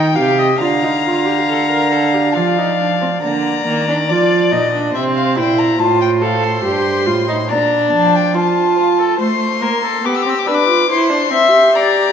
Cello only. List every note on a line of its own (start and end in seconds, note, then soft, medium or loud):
0.00 0.17 D#3 medium
0.18 0.60 C3 medium
0.61 2.37 D3 medium
2.36 3.22 F3 medium
3.22 3.62 D3 medium
3.66 4.11 D#3 medium
4.09 4.54 F3 medium
4.52 4.94 A#2 medium
4.95 5.40 C3 medium
5.38 5.80 A#2 medium
5.80 6.64 A2 medium
6.65 7.09 G2 medium
7.07 7.53 A2 medium
7.51 7.93 A#2 medium
7.94 8.35 F3 medium